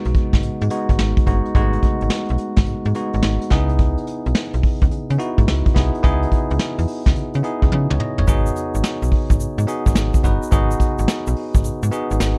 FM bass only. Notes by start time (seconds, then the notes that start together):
0.06 B1
0.33 G#1
0.43 G#2
0.62 G#2
0.90 G#1
0.99 G#1
1.27 G1
1.55 G#1
2.02 G#1
2.30 B1
2.57 G#1
2.68 G#2
2.86 G#2
3.14 G#1
3.23 G#1
3.51 C#2
4.26 B1
4.54 B1
4.82 C#2
4.92 C#3
5.10 C#3
5.38 G#2
5.48 C#2
5.76 C2
6.04 C#2
6.51 C#2
6.79 E2
7.06 C#2
7.17 C#3
7.35 C#3
7.63 C#2
7.73 C#3
7.91 C#2
8.19 G1
8.28 G#1
8.75 G#1
9.02 B1
9.30 G#1
9.40 G#2
9.58 G#2
9.86 G#1
9.96 G#1
10.24 G1
10.52 G#1
10.99 G#1
11.27 B1
11.55 G#1
11.64 G#2
11.83 G#2
12.11 G#1
12.20 G#1